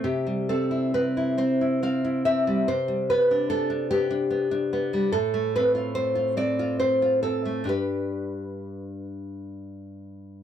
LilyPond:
\new Staff \with { instrumentName = "Nylon-string guitar" } { \time 6/8 \key c \major \tempo 4. = 46 << { g'8 a'8 b'8 c''8 f''8 e''8 | c''8 b'8 a'8 g'4. | a'8 b'8 c''8 d''8 c''8 a'8 | b'4. r4. | } \\ { c16 g16 c'16 e'16 c'16 e'16 c'16 e'16 c'16 e'16 c'16 g16 | c16 g16 b16 d'16 b16 d'16 b16 d'16 b16 d'16 b16 g16 | a,16 a16 c'16 f'16 c'16 f'16 c'16 f'16 c'16 f'16 c'16 a16 | <g, d' g'>2. | } >> }